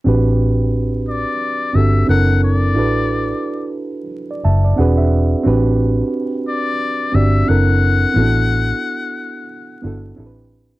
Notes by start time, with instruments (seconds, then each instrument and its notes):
0.04 fingered electric bass A1, reed electric piano C4 D4 F#4 G4
0.08 reed electric piano B4
1.09 muted trumpet D5
1.73 fingered electric bass G1, reed electric piano C4 D4 F#4 G4, muted trumpet E5
1.77 reed electric piano A4
2.06 fingered electric bass F#1, reed electric piano C4 D4 E4 A4, muted trumpet F#5
2.10 reed electric piano A#4
2.44 muted trumpet D5
2.74 fingered electric bass A1, reed electric piano D4 E4 F#4 A4
2.79 reed electric piano B4
4.31 reed electric piano D5
4.44 fingered electric bass F#1, reed electric piano E5 A5
4.64 reed electric piano D5
4.76 fingered electric bass E1, reed electric piano C4 D4 F#4 G#4 F#5
4.81 reed electric piano B4
4.97 reed electric piano E5
5.43 fingered electric bass A1, reed electric piano C4 D4 F#4 G4
5.47 reed electric piano B4
6.48 muted trumpet D5
7.12 fingered electric bass G1, reed electric piano C4 D4 F#4 G4, muted trumpet E5
7.16 reed electric piano D5
7.46 fingered electric bass F#1, reed electric piano C4 D4 E4 A4, muted trumpet F#5
7.50 reed electric piano A#4
8.14 fingered electric bass A1, reed electric piano B3 C4 E4 F#4
8.18 reed electric piano D4 A4
9.82 fingered electric bass G1, reed electric piano B3 D4 E4 F#4
9.86 reed electric piano A4
10.16 fingered electric bass A1, reed electric piano C4 D4 E4 G4 A4
10.26 reed electric piano B4